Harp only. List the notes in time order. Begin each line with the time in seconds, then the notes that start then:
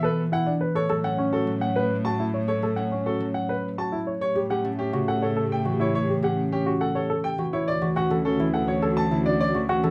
Already playing: E3 F#3 B3
0.89 F#3
1.04 C#4
1.47 F#3
2.62 F#3
2.77 C#4
3.20 F#3
4.35 G3
4.50 C#4
4.65 A3
4.93 C#3
5.65 E3
6.23 C#4
7.38 E3
7.82 E3
7.96 C#4
8.10 E3
8.39 E3
8.82 C#4
9.11 D3
9.54 E3
9.69 C#4
9.83 E3